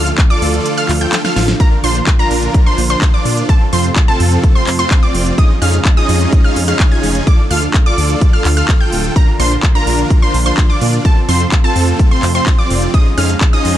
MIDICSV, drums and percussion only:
0, 0, Header, 1, 2, 480
1, 0, Start_track
1, 0, Key_signature, -2, "major"
1, 0, Tempo, 472441
1, 1627, Time_signature, 4, 2, 24, 8
1, 13996, End_track
2, 0, Start_track
2, 0, Title_t, "Drums"
2, 66, Note_on_c, 9, 42, 55
2, 168, Note_off_c, 9, 42, 0
2, 184, Note_on_c, 9, 39, 118
2, 186, Note_on_c, 9, 36, 118
2, 186, Note_on_c, 9, 42, 82
2, 285, Note_off_c, 9, 39, 0
2, 288, Note_off_c, 9, 36, 0
2, 288, Note_off_c, 9, 42, 0
2, 307, Note_on_c, 9, 42, 37
2, 408, Note_off_c, 9, 42, 0
2, 427, Note_on_c, 9, 46, 91
2, 529, Note_off_c, 9, 46, 0
2, 547, Note_on_c, 9, 42, 55
2, 649, Note_off_c, 9, 42, 0
2, 666, Note_on_c, 9, 42, 83
2, 768, Note_off_c, 9, 42, 0
2, 787, Note_on_c, 9, 42, 41
2, 889, Note_off_c, 9, 42, 0
2, 904, Note_on_c, 9, 39, 66
2, 907, Note_on_c, 9, 46, 105
2, 1005, Note_off_c, 9, 39, 0
2, 1008, Note_off_c, 9, 46, 0
2, 1025, Note_on_c, 9, 42, 59
2, 1127, Note_off_c, 9, 42, 0
2, 1143, Note_on_c, 9, 39, 114
2, 1146, Note_on_c, 9, 38, 60
2, 1146, Note_on_c, 9, 42, 83
2, 1244, Note_off_c, 9, 39, 0
2, 1247, Note_off_c, 9, 38, 0
2, 1247, Note_off_c, 9, 42, 0
2, 1266, Note_on_c, 9, 38, 63
2, 1266, Note_on_c, 9, 42, 41
2, 1367, Note_off_c, 9, 38, 0
2, 1367, Note_off_c, 9, 42, 0
2, 1385, Note_on_c, 9, 38, 90
2, 1385, Note_on_c, 9, 46, 91
2, 1487, Note_off_c, 9, 38, 0
2, 1487, Note_off_c, 9, 46, 0
2, 1505, Note_on_c, 9, 38, 87
2, 1505, Note_on_c, 9, 42, 56
2, 1607, Note_off_c, 9, 38, 0
2, 1607, Note_off_c, 9, 42, 0
2, 1625, Note_on_c, 9, 42, 84
2, 1626, Note_on_c, 9, 36, 122
2, 1726, Note_off_c, 9, 42, 0
2, 1727, Note_off_c, 9, 36, 0
2, 1865, Note_on_c, 9, 46, 108
2, 1967, Note_off_c, 9, 46, 0
2, 1985, Note_on_c, 9, 42, 55
2, 2087, Note_off_c, 9, 42, 0
2, 2102, Note_on_c, 9, 39, 123
2, 2105, Note_on_c, 9, 42, 82
2, 2106, Note_on_c, 9, 36, 122
2, 2204, Note_off_c, 9, 39, 0
2, 2207, Note_off_c, 9, 36, 0
2, 2207, Note_off_c, 9, 42, 0
2, 2226, Note_on_c, 9, 42, 38
2, 2327, Note_off_c, 9, 42, 0
2, 2345, Note_on_c, 9, 46, 94
2, 2446, Note_off_c, 9, 46, 0
2, 2465, Note_on_c, 9, 42, 54
2, 2566, Note_off_c, 9, 42, 0
2, 2585, Note_on_c, 9, 36, 123
2, 2585, Note_on_c, 9, 42, 87
2, 2686, Note_off_c, 9, 42, 0
2, 2687, Note_off_c, 9, 36, 0
2, 2825, Note_on_c, 9, 46, 110
2, 2926, Note_off_c, 9, 46, 0
2, 2946, Note_on_c, 9, 42, 58
2, 3047, Note_off_c, 9, 42, 0
2, 3063, Note_on_c, 9, 39, 120
2, 3065, Note_on_c, 9, 36, 115
2, 3066, Note_on_c, 9, 42, 81
2, 3165, Note_off_c, 9, 39, 0
2, 3167, Note_off_c, 9, 36, 0
2, 3168, Note_off_c, 9, 42, 0
2, 3306, Note_on_c, 9, 46, 95
2, 3408, Note_off_c, 9, 46, 0
2, 3426, Note_on_c, 9, 42, 57
2, 3528, Note_off_c, 9, 42, 0
2, 3546, Note_on_c, 9, 36, 127
2, 3546, Note_on_c, 9, 42, 81
2, 3647, Note_off_c, 9, 42, 0
2, 3648, Note_off_c, 9, 36, 0
2, 3786, Note_on_c, 9, 46, 109
2, 3888, Note_off_c, 9, 46, 0
2, 3906, Note_on_c, 9, 42, 53
2, 4008, Note_off_c, 9, 42, 0
2, 4024, Note_on_c, 9, 39, 127
2, 4026, Note_on_c, 9, 36, 126
2, 4027, Note_on_c, 9, 42, 81
2, 4125, Note_off_c, 9, 39, 0
2, 4128, Note_off_c, 9, 36, 0
2, 4128, Note_off_c, 9, 42, 0
2, 4147, Note_on_c, 9, 42, 36
2, 4248, Note_off_c, 9, 42, 0
2, 4267, Note_on_c, 9, 46, 103
2, 4368, Note_off_c, 9, 46, 0
2, 4387, Note_on_c, 9, 42, 54
2, 4489, Note_off_c, 9, 42, 0
2, 4506, Note_on_c, 9, 36, 127
2, 4507, Note_on_c, 9, 42, 86
2, 4608, Note_off_c, 9, 36, 0
2, 4609, Note_off_c, 9, 42, 0
2, 4745, Note_on_c, 9, 39, 68
2, 4748, Note_on_c, 9, 46, 116
2, 4846, Note_off_c, 9, 39, 0
2, 4849, Note_off_c, 9, 46, 0
2, 4867, Note_on_c, 9, 42, 56
2, 4969, Note_off_c, 9, 42, 0
2, 4984, Note_on_c, 9, 39, 122
2, 4987, Note_on_c, 9, 36, 119
2, 4987, Note_on_c, 9, 42, 79
2, 5086, Note_off_c, 9, 39, 0
2, 5088, Note_off_c, 9, 36, 0
2, 5089, Note_off_c, 9, 42, 0
2, 5227, Note_on_c, 9, 46, 97
2, 5329, Note_off_c, 9, 46, 0
2, 5348, Note_on_c, 9, 42, 52
2, 5449, Note_off_c, 9, 42, 0
2, 5467, Note_on_c, 9, 36, 124
2, 5469, Note_on_c, 9, 42, 78
2, 5569, Note_off_c, 9, 36, 0
2, 5570, Note_off_c, 9, 42, 0
2, 5708, Note_on_c, 9, 46, 109
2, 5810, Note_off_c, 9, 46, 0
2, 5828, Note_on_c, 9, 42, 52
2, 5930, Note_off_c, 9, 42, 0
2, 5945, Note_on_c, 9, 39, 119
2, 5947, Note_on_c, 9, 36, 127
2, 5948, Note_on_c, 9, 42, 80
2, 6046, Note_off_c, 9, 39, 0
2, 6048, Note_off_c, 9, 36, 0
2, 6049, Note_off_c, 9, 42, 0
2, 6067, Note_on_c, 9, 42, 37
2, 6169, Note_off_c, 9, 42, 0
2, 6186, Note_on_c, 9, 46, 105
2, 6288, Note_off_c, 9, 46, 0
2, 6306, Note_on_c, 9, 42, 55
2, 6408, Note_off_c, 9, 42, 0
2, 6426, Note_on_c, 9, 42, 83
2, 6427, Note_on_c, 9, 36, 127
2, 6528, Note_off_c, 9, 36, 0
2, 6528, Note_off_c, 9, 42, 0
2, 6667, Note_on_c, 9, 46, 110
2, 6768, Note_off_c, 9, 46, 0
2, 6787, Note_on_c, 9, 42, 55
2, 6888, Note_off_c, 9, 42, 0
2, 6904, Note_on_c, 9, 39, 121
2, 6906, Note_on_c, 9, 36, 118
2, 6907, Note_on_c, 9, 42, 74
2, 7006, Note_off_c, 9, 39, 0
2, 7008, Note_off_c, 9, 36, 0
2, 7009, Note_off_c, 9, 42, 0
2, 7146, Note_on_c, 9, 46, 96
2, 7248, Note_off_c, 9, 46, 0
2, 7266, Note_on_c, 9, 42, 52
2, 7368, Note_off_c, 9, 42, 0
2, 7386, Note_on_c, 9, 36, 126
2, 7386, Note_on_c, 9, 42, 77
2, 7488, Note_off_c, 9, 36, 0
2, 7488, Note_off_c, 9, 42, 0
2, 7626, Note_on_c, 9, 46, 110
2, 7727, Note_off_c, 9, 46, 0
2, 7746, Note_on_c, 9, 42, 49
2, 7848, Note_off_c, 9, 42, 0
2, 7863, Note_on_c, 9, 39, 119
2, 7866, Note_on_c, 9, 36, 124
2, 7866, Note_on_c, 9, 42, 77
2, 7965, Note_off_c, 9, 39, 0
2, 7968, Note_off_c, 9, 36, 0
2, 7968, Note_off_c, 9, 42, 0
2, 7987, Note_on_c, 9, 42, 35
2, 8088, Note_off_c, 9, 42, 0
2, 8106, Note_on_c, 9, 46, 98
2, 8208, Note_off_c, 9, 46, 0
2, 8226, Note_on_c, 9, 42, 51
2, 8327, Note_off_c, 9, 42, 0
2, 8345, Note_on_c, 9, 42, 80
2, 8346, Note_on_c, 9, 36, 124
2, 8447, Note_off_c, 9, 42, 0
2, 8448, Note_off_c, 9, 36, 0
2, 8583, Note_on_c, 9, 39, 62
2, 8586, Note_on_c, 9, 46, 112
2, 8685, Note_off_c, 9, 39, 0
2, 8688, Note_off_c, 9, 46, 0
2, 8706, Note_on_c, 9, 42, 53
2, 8808, Note_off_c, 9, 42, 0
2, 8823, Note_on_c, 9, 39, 114
2, 8826, Note_on_c, 9, 36, 122
2, 8826, Note_on_c, 9, 42, 74
2, 8924, Note_off_c, 9, 39, 0
2, 8927, Note_off_c, 9, 42, 0
2, 8928, Note_off_c, 9, 36, 0
2, 9066, Note_on_c, 9, 46, 96
2, 9168, Note_off_c, 9, 46, 0
2, 9187, Note_on_c, 9, 42, 52
2, 9289, Note_off_c, 9, 42, 0
2, 9306, Note_on_c, 9, 36, 127
2, 9307, Note_on_c, 9, 42, 76
2, 9408, Note_off_c, 9, 36, 0
2, 9408, Note_off_c, 9, 42, 0
2, 9546, Note_on_c, 9, 46, 113
2, 9648, Note_off_c, 9, 46, 0
2, 9667, Note_on_c, 9, 42, 49
2, 9768, Note_off_c, 9, 42, 0
2, 9784, Note_on_c, 9, 39, 114
2, 9786, Note_on_c, 9, 36, 120
2, 9787, Note_on_c, 9, 42, 76
2, 9885, Note_off_c, 9, 39, 0
2, 9888, Note_off_c, 9, 36, 0
2, 9888, Note_off_c, 9, 42, 0
2, 9907, Note_on_c, 9, 42, 35
2, 10009, Note_off_c, 9, 42, 0
2, 10027, Note_on_c, 9, 46, 94
2, 10129, Note_off_c, 9, 46, 0
2, 10147, Note_on_c, 9, 42, 51
2, 10249, Note_off_c, 9, 42, 0
2, 10266, Note_on_c, 9, 36, 121
2, 10267, Note_on_c, 9, 42, 78
2, 10368, Note_off_c, 9, 36, 0
2, 10369, Note_off_c, 9, 42, 0
2, 10507, Note_on_c, 9, 46, 107
2, 10609, Note_off_c, 9, 46, 0
2, 10627, Note_on_c, 9, 42, 54
2, 10729, Note_off_c, 9, 42, 0
2, 10743, Note_on_c, 9, 39, 108
2, 10746, Note_on_c, 9, 42, 77
2, 10747, Note_on_c, 9, 36, 116
2, 10845, Note_off_c, 9, 39, 0
2, 10848, Note_off_c, 9, 36, 0
2, 10848, Note_off_c, 9, 42, 0
2, 10986, Note_on_c, 9, 46, 97
2, 11088, Note_off_c, 9, 46, 0
2, 11107, Note_on_c, 9, 42, 51
2, 11209, Note_off_c, 9, 42, 0
2, 11226, Note_on_c, 9, 42, 83
2, 11227, Note_on_c, 9, 36, 122
2, 11328, Note_off_c, 9, 36, 0
2, 11328, Note_off_c, 9, 42, 0
2, 11466, Note_on_c, 9, 46, 104
2, 11568, Note_off_c, 9, 46, 0
2, 11586, Note_on_c, 9, 42, 52
2, 11687, Note_off_c, 9, 42, 0
2, 11704, Note_on_c, 9, 39, 114
2, 11707, Note_on_c, 9, 36, 114
2, 11707, Note_on_c, 9, 42, 79
2, 11806, Note_off_c, 9, 39, 0
2, 11808, Note_off_c, 9, 36, 0
2, 11808, Note_off_c, 9, 42, 0
2, 11826, Note_on_c, 9, 42, 35
2, 11928, Note_off_c, 9, 42, 0
2, 11946, Note_on_c, 9, 46, 92
2, 12047, Note_off_c, 9, 46, 0
2, 12066, Note_on_c, 9, 42, 53
2, 12168, Note_off_c, 9, 42, 0
2, 12186, Note_on_c, 9, 36, 116
2, 12187, Note_on_c, 9, 42, 81
2, 12288, Note_off_c, 9, 36, 0
2, 12289, Note_off_c, 9, 42, 0
2, 12423, Note_on_c, 9, 39, 59
2, 12426, Note_on_c, 9, 46, 104
2, 12524, Note_off_c, 9, 39, 0
2, 12527, Note_off_c, 9, 46, 0
2, 12545, Note_on_c, 9, 42, 53
2, 12647, Note_off_c, 9, 42, 0
2, 12663, Note_on_c, 9, 39, 111
2, 12666, Note_on_c, 9, 36, 116
2, 12666, Note_on_c, 9, 42, 76
2, 12765, Note_off_c, 9, 39, 0
2, 12768, Note_off_c, 9, 36, 0
2, 12768, Note_off_c, 9, 42, 0
2, 12907, Note_on_c, 9, 46, 94
2, 13008, Note_off_c, 9, 46, 0
2, 13027, Note_on_c, 9, 42, 53
2, 13128, Note_off_c, 9, 42, 0
2, 13146, Note_on_c, 9, 36, 117
2, 13147, Note_on_c, 9, 42, 82
2, 13248, Note_off_c, 9, 36, 0
2, 13248, Note_off_c, 9, 42, 0
2, 13386, Note_on_c, 9, 46, 103
2, 13488, Note_off_c, 9, 46, 0
2, 13506, Note_on_c, 9, 42, 56
2, 13608, Note_off_c, 9, 42, 0
2, 13624, Note_on_c, 9, 39, 119
2, 13626, Note_on_c, 9, 36, 120
2, 13627, Note_on_c, 9, 42, 83
2, 13725, Note_off_c, 9, 39, 0
2, 13728, Note_off_c, 9, 36, 0
2, 13728, Note_off_c, 9, 42, 0
2, 13747, Note_on_c, 9, 42, 39
2, 13849, Note_off_c, 9, 42, 0
2, 13866, Note_on_c, 9, 46, 92
2, 13968, Note_off_c, 9, 46, 0
2, 13996, End_track
0, 0, End_of_file